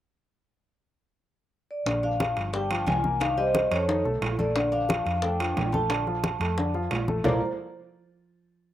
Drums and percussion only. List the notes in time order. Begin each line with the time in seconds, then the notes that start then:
1.86 high bongo, high conga, high timbale
2.03 high bongo, high conga
2.20 high bongo, high conga, high timbale
2.37 high bongo, high timbale
2.54 high bongo, high conga
2.71 high bongo, high conga, high timbale
2.87 high bongo, low bongo, high conga, high timbale, low timbale
3.04 high conga
3.21 high bongo, high conga, high timbale
3.38 high bongo, high conga
3.55 high bongo, high conga, high timbale
3.72 high bongo, high conga, high timbale
3.89 high bongo, high conga
4.05 high bongo, high conga
4.22 high bongo, low bongo, high conga, high timbale, low timbale
4.39 high conga
4.56 high bongo, high conga, high timbale
4.72 high bongo, high conga
4.89 high bongo, high conga, high timbale
5.06 high bongo, high timbale
5.22 high bongo, high conga
5.40 high bongo, high conga, high timbale
5.57 high bongo, low bongo, high conga, high timbale, low timbale
5.74 high conga
5.90 high bongo, high conga, high timbale
6.07 high bongo, high conga
6.24 high bongo, high conga, high timbale
6.40 high bongo, high conga, high timbale
6.58 high bongo, high conga
6.74 high bongo, high conga
6.91 high bongo, low bongo, high conga, high timbale, low timbale
7.08 high conga
7.24 low bongo, low conga, low timbale